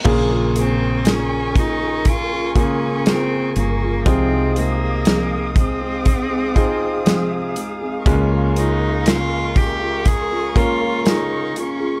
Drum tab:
CC |x-------|--------|--------|
HH |-xxxxxxx|xxxxxxxx|xxxxxxxx|
SD |--o---o-|--o---o-|--o---o-|
BD |o--ooo--|o--ooo--|o--ooo--|